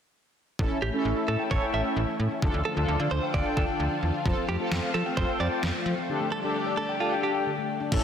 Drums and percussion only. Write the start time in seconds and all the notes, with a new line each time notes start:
0.59 kick
1.51 kick
2.42 kick
3.34 kick
3.57 kick
4.26 kick
4.72 snare
5.17 kick
5.63 snare
7.92 kick, crash